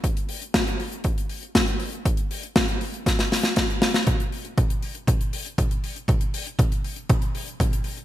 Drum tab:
HH |xxoxxxoxxxoxxxox|xxoxxxoxxxoxxxox|xxoxxxoxxxoxxxox|xxoxxxoxxxoxxxox|
SD |----o-------o---|----o---ooooo-oo|----------------|----------------|
T2 |----------------|----------------|o---o---o---o---|o---o---o---o---|
BD |o---o---o---o---|o---o---o---o---|o---o---o---o---|o---o---o---o---|